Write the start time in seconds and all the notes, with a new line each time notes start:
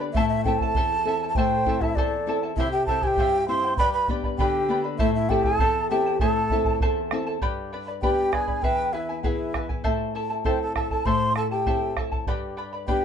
Already playing: D3
0.00 B4 D5 B5
0.13 A2 E4 C5 E5, bombo low
0.17 A4 A5
0.29 E5
0.45 C4 E4 A4 E5 G5 A5, bombo low
0.59 A5, bombo low
0.63 E4 A4
0.75 E2 E4 A4 C5 E5 A5, bombo low
1.05 C4 E4 A4 E5 A5
1.23 E4 A4 A5
1.29 A5
1.35 A2 E4 A4 C5 E5 G5 A5, bombo low
1.66 C4 E4 A4 E5 A5, bombo low
1.81 E4 A4 E5 A5, bombo low
1.95 E2 E4 A4 C5 D5 E5 A5, bombo low
2.26 C4 E4 A4 E5 A5
2.43 E4 A4 A5
2.56 C3 E4 G4 E5, bombo low
2.60 E4 C5 G5
2.71 G4 G5
2.86 C4 E4 G4 A4 E5 A5, bombo low
2.90 C5 G5
3.02 E4 G4 C5 G5 G#5, bombo low
3.07 G5
3.17 G2 E4 G4 C5 E5 G5, bombo low
3.47 C4 E4 G4 C5 E5 G5 C6
3.64 E4 C5 G5
3.77 G2 G4 B4 D5 G5 B5, bombo low
3.93 B4 B5
4.08 B3 D4 G4 B4 D5 G5 B5, bombo low
4.24 B4 D5 B5, bombo low
4.38 D3 G4 B4 D5 G5 B5, bombo low
4.69 B3 D4 G4 B4 D5 G5 B5
4.84 B4 D5 B5
4.98 A2 E4 A4 C5 E5 A5, bombo low
5.15 E4 E5
5.29 C4 E4 G4 A4 E5 G5 A5, bombo low
5.43 E4 A4 A5, bombo low
5.59 E2 E4 A4 C5 E5 A5, bombo low
5.90 C4 E4 G4 A4 E5 G5 A5
6.06 E4 A4 A5
6.20 A2 E4 A4 C5 E5 A5, bombo low
6.50 C4 E4 A4 E5 A5, bombo low
6.65 E4 A4 A5, bombo low
6.80 E2 E4 A4 C5 E5 A5, bombo low
7.11 C4 E4 A4 E5 A5, bombo rim
7.27 E4 A4 A5
7.42 G2 G4 B4 D5 G5 B5, bombo low
7.73 B4 D5 G5 B5
7.87 B4 D5 B5
8.02 B3 D4 G4 B4 D5 G5 B5, bombo low
8.32 G#4 B4 D5 G5 G#5 B5, bombo rim, bombo low
8.48 B4 D5 B5, bombo low
8.62 E2 E4 G#4 B4 E5 G5, bombo low
8.93 E4 B4 E5 G#5
9.09 E4 B4 G#5
9.23 B3 E4 G#4 B4 E5 G5 G#5, bombo low
9.28 E5
9.54 E4 B4 E5 G#5, bombo rim, bombo low
9.69 E4 B4 G#5, bombo low
9.84 A2 E4 A4 C5 E5 A5, bombo low
10.15 E4 A4 E5 A5
10.30 E4 A4 A5
10.44 C4 E4 A4 C5 E5 G5 A5, bombo low
10.61 A4 A5
10.76 E4 A4 E5 A5, bombo rim, bombo low
10.90 E4 A4 A5, bombo low
11.05 A2 E4 A4 C5 E5 A5 C6, bombo low
11.35 E4 A4 E5 A5, bombo rim
11.50 E4 G4 A4 G5 A5
11.66 C4 E4 A4 C5 E5 A5, bombo low
11.97 E4 A4 E5 A5, bombo rim, bombo low
12.12 E4 A4 A5, bombo low
12.27 G2 G4 B4 D5 G5 B5, bombo low
12.57 B4 D5 G5 B5
12.73 B4 D5 B5
12.88 B3 D4 G4 B4 D5 G5 B5, bombo low